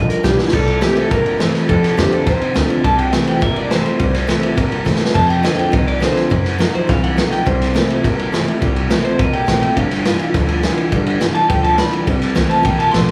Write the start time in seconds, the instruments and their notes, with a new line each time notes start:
Already playing: clean electric guitar G2 F3, steel-string acoustic guitar D3
0.09 clean electric guitar A#4, muted upright bass stroke, closed hi-hat
0.23 upright bass B1, clean electric guitar G2 E3 G4, steel-string acoustic guitar G3 B3 F4, kick, snare, closed hi-hat
0.38 steel-string acoustic guitar B3 F4, clean electric guitar E4, muted upright bass stroke, snare
0.49 clean electric guitar C3, snare
0.53 upright bass C2, steel-string acoustic guitar C3, clean electric guitar G3 A4, kick, crash
0.68 ride
0.81 clean electric guitar C3 A3 G4, steel-string acoustic guitar E3 A#3 C4 E4, snare, ride
0.96 steel-string acoustic guitar C4 E4, clean electric guitar A4, muted upright bass stroke, ride
1.11 upright bass G1, steel-string acoustic guitar G2, clean electric guitar C3 A#3 A#4, kick, snare, ride
1.26 ride
1.39 clean electric guitar C3 A3, steel-string acoustic guitar E3 C4 E4, snare, ride
1.54 muted upright bass stroke, snare, ride
1.68 clean electric guitar F2 C3 A4, upright bass F2, steel-string acoustic guitar F2, kick, ride
1.83 muted upright bass stroke, snare, ride
1.97 clean electric guitar F2 D3 G4, upright bass F2, steel-string acoustic guitar D#3 A3 C4 F4, snare, ride
2.12 steel-string acoustic guitar C4 F4, clean electric guitar A4, muted upright bass stroke, ride
2.26 upright bass D#2, clean electric guitar F2 D#3 C5, steel-string acoustic guitar C3, kick, snare, ride
2.41 muted upright bass stroke, ride
2.54 upright bass D2, clean electric guitar F2 D3, steel-string acoustic guitar D#3 A3 C4 F4, snare, ride
2.68 steel-string acoustic guitar C4 F4, muted upright bass stroke, ride
2.84 upright bass C2, steel-string acoustic guitar C3, clean electric guitar C3 G3 A5, kick, ride
2.98 clean electric guitar G5, ride
3.13 clean electric guitar C3 A3 E5, steel-string acoustic guitar E3 C4 E4, snare, ride
3.27 clean electric guitar G5, muted upright bass stroke, ride
3.41 upright bass G1, steel-string acoustic guitar G2, clean electric guitar C3 A#3 E5, kick, ride
3.56 clean electric guitar D5, ride
3.70 clean electric guitar C3 A3 C5, steel-string acoustic guitar E3 A#3 C4 E4, snare, ride
3.85 steel-string acoustic guitar C4 E4, muted upright bass stroke, ride
3.99 upright bass C2, steel-string acoustic guitar C3, clean electric guitar C3 G3, kick, ride
4.14 snare, ride
4.27 clean electric guitar C3 A3, steel-string acoustic guitar E3 A#3 C4 E4, snare, ride
4.42 steel-string acoustic guitar C4 E4, muted upright bass stroke, ride
4.57 upright bass G1, steel-string acoustic guitar G2, clean electric guitar C3 A#3, kick, snare, ride
4.72 ride
4.85 clean electric guitar C3 A3, steel-string acoustic guitar E3 A#3 C4 E4, kick, snare
4.96 snare
5.00 steel-string acoustic guitar C4 E4, muted upright bass stroke
5.05 snare
5.14 steel-string acoustic guitar F2, clean electric guitar F2 C3 A5, upright bass F2, kick, ride, crash
5.28 clean electric guitar G5, ride
5.43 clean electric guitar F2 D3 D#5, steel-string acoustic guitar D#3 A3 C4 F4, snare, ride
5.57 steel-string acoustic guitar C4 F4, clean electric guitar G5, muted upright bass stroke, ride
5.72 upright bass C2, clean electric guitar F2 D#3 D#5, steel-string acoustic guitar C3, kick, ride
5.87 clean electric guitar D5, ride
6.00 clean electric guitar F2 D3 C5, steel-string acoustic guitar D#3 A3 C4 F4, snare, ride
6.15 steel-string acoustic guitar C4 F4, muted upright bass stroke, snare, ride
6.30 steel-string acoustic guitar F#2, upright bass F#2, clean electric guitar F#2 C#3, kick, ride
6.46 snare, ride
6.59 clean electric guitar F#2 D#3, steel-string acoustic guitar F#3 A3 D#4 F#4, snare, ride
6.74 steel-string acoustic guitar D#4 F#4, clean electric guitar C5, muted upright bass stroke, ride
6.87 upright bass C2, clean electric guitar F#2 E3 F5, steel-string acoustic guitar C3, kick, snare, ride
7.04 clean electric guitar F#5, ride
7.17 clean electric guitar F#2 D#3, steel-string acoustic guitar F#3 A3 D#4 F#4, snare, ride
7.31 steel-string acoustic guitar D#4 F#4, clean electric guitar G5, muted upright bass stroke, snare, ride
7.46 upright bass C2, steel-string acoustic guitar C3, clean electric guitar C3 G3 C5, kick, ride
7.62 snare, ride
7.74 clean electric guitar C3 A3, steel-string acoustic guitar E3 A#3 C4 E4, snare, ride
7.88 steel-string acoustic guitar C4 E4, muted upright bass stroke, ride
8.03 upright bass G1, steel-string acoustic guitar G2, clean electric guitar C3 A#3, kick, snare, ride
8.19 ride
8.31 clean electric guitar C3 A3, steel-string acoustic guitar E3 A#3 C4 E4, snare, ride
8.48 steel-string acoustic guitar C4 E4, muted upright bass stroke, ride
8.61 upright bass C2, clean electric guitar C3 G3, steel-string acoustic guitar C3, kick, ride
8.76 ride
8.89 clean electric guitar C3 A3, steel-string acoustic guitar E3 A#3 C4 E4, snare, ride
9.04 steel-string acoustic guitar C4 E4, clean electric guitar C5, muted upright bass stroke, ride
9.18 upright bass A#1, steel-string acoustic guitar G2, clean electric guitar C3 A#3 D#5, kick, ride
9.33 clean electric guitar G5, muted upright bass stroke, ride
9.47 upright bass A1, clean electric guitar C3 A3, steel-string acoustic guitar E3 A#3 C4 E4, kick, snare, ride
9.62 steel-string acoustic guitar C4 E4, clean electric guitar G5, muted upright bass stroke, ride
9.75 upright bass G1, clean electric guitar G2 D3 F5, steel-string acoustic guitar G3, kick, ride
9.91 snare, ride
10.05 clean electric guitar G2 E3, steel-string acoustic guitar G3 B3 F4, snare, ride
10.19 steel-string acoustic guitar B3 F4, muted upright bass stroke, ride
10.34 upright bass D2, clean electric guitar G2 F3, steel-string acoustic guitar D3, kick, snare, ride
10.49 ride
10.62 clean electric guitar G2 E3, steel-string acoustic guitar G3 B3 F4, snare, ride
10.77 steel-string acoustic guitar B3 F4, muted upright bass stroke, ride
10.92 upright bass G1, clean electric guitar G2 D3, steel-string acoustic guitar G3, kick, ride
11.06 ride
11.20 clean electric guitar G2 E3, steel-string acoustic guitar G3 B3 F4, snare, ride
11.35 steel-string acoustic guitar B3 F4, clean electric guitar A5, muted upright bass stroke, ride
11.49 upright bass D2, clean electric guitar G2 F3 G5, steel-string acoustic guitar D3, kick, ride
11.63 clean electric guitar A5, ride
11.78 clean electric guitar G2 E3 B5, steel-string acoustic guitar G3 B3 F4, snare, ride
11.93 muted upright bass stroke, ride
12.07 upright bass C2, clean electric guitar C3 G3, steel-string acoustic guitar C3, kick, ride
12.22 muted upright bass stroke, snare, ride
12.35 upright bass C2, clean electric guitar C3 A3, steel-string acoustic guitar E3 A#3 C4 E4, snare, ride
12.50 steel-string acoustic guitar C4 E4, clean electric guitar A5, muted upright bass stroke, ride
12.63 upright bass A#1, clean electric guitar C3 A#3 G5, steel-string acoustic guitar E3, kick, ride
12.79 clean electric guitar A5, muted upright bass stroke, ride
12.92 upright bass A1, clean electric guitar C3 A3 C6, steel-string acoustic guitar F3, snare, ride
13.08 muted upright bass stroke